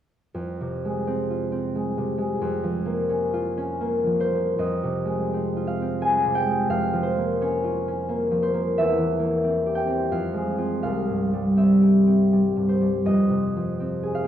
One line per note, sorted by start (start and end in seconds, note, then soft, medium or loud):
0.34 2.40 F2 medium
0.61 1.96 C3 soft
0.85 1.74 G#3 soft
1.07 1.51 C4 soft
1.30 3.32 F4 soft
1.52 2.45 C4 soft
1.75 2.17 G#3 soft
1.98 2.45 C3 soft
2.18 2.44 G#3 soft
2.41 4.57 F2 medium
2.64 4.05 F3 medium
2.86 3.80 A#3 medium
3.09 3.56 C#4 medium
3.33 5.55 F4 medium
3.57 4.60 C#4 medium
3.81 4.34 A#3 medium
4.06 6.92 F3 medium
4.20 6.74 C5 medium
4.35 4.61 A#3 soft
4.59 6.69 F2 soft
4.59 6.41 D#5 medium
4.84 6.24 C3 soft
5.05 6.00 G#3 soft
5.33 5.81 C4 soft
5.56 7.63 F4 soft
5.67 6.68 F5 medium
5.82 6.76 C4 soft
6.01 6.45 G#3 soft
6.01 6.74 G#5 medium
6.25 6.74 C3 soft
6.35 6.95 G5 medium
6.46 6.73 G#3 soft
6.69 8.78 F2 medium
6.69 8.78 F5 medium
6.93 8.30 F3 soft
7.03 7.63 C5 medium
7.17 8.08 A#3 soft
7.41 7.87 C#4 medium
7.41 8.80 C#5 medium
7.64 8.79 F4 soft
7.88 8.80 C#4 soft
8.09 8.53 A#3 soft
8.31 8.79 F3 soft
8.43 12.33 C5 medium
8.54 9.18 A#3 soft
8.78 10.15 E2 medium
8.78 10.14 E5 medium
8.98 10.13 E3 soft
9.19 10.13 A#3 soft
9.44 9.86 C4 soft
9.66 10.14 G4 soft
9.75 10.13 G5 medium
9.87 10.57 C4 soft
10.12 10.88 F2 medium
10.12 10.82 F5 medium
10.34 10.87 G#3 soft
10.58 11.56 C4 soft
10.58 10.86 F4 soft
10.83 13.11 C2 medium
10.83 14.13 F5 medium
11.09 12.55 G2 soft
11.33 12.32 G3 soft
11.57 12.06 C4 soft
11.57 13.10 E5 medium
11.81 13.10 G4 soft
12.07 13.79 C4 soft
12.33 12.80 G3 soft
12.57 13.10 G2 soft
12.69 14.28 C5 medium
12.81 13.10 G3 soft
13.05 14.28 F2 soft
13.05 14.28 D#5 medium
13.30 14.28 C3 soft
13.57 14.28 F3 soft
13.80 14.23 C4 soft
14.03 14.28 G#4 soft
14.15 14.28 F5 medium
14.24 14.28 C4 soft